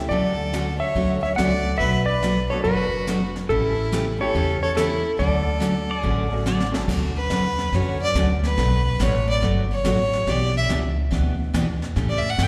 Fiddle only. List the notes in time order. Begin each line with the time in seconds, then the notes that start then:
0.09 A4
0.79 C#5
1.22 C#5
1.36 D5
1.79 B4
2.06 B4
2.49 A4
2.64 F#4
3.49 E4
4.19 A4
4.62 A4
4.77 E4
5.19 A4
6.00 G#4
7.17 B4
7.74 C#5
8.02 D5
8.45 B4
9.03 C#5
9.29 D5
9.72 C#5
10.29 D5
10.57 E5
12.09 D5
12.18 E5
12.30 F#5
12.43 G5